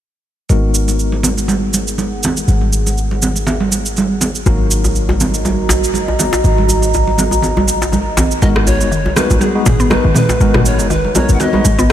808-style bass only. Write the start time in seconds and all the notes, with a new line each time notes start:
0.50 G#1
2.48 G#1
4.46 G#1
6.44 G#1
8.42 G#1
8.81 F#1
9.30 G#1
9.66 G#1
10.05 G#1
10.40 G#1
10.79 F#1
11.29 G#1
11.65 G#1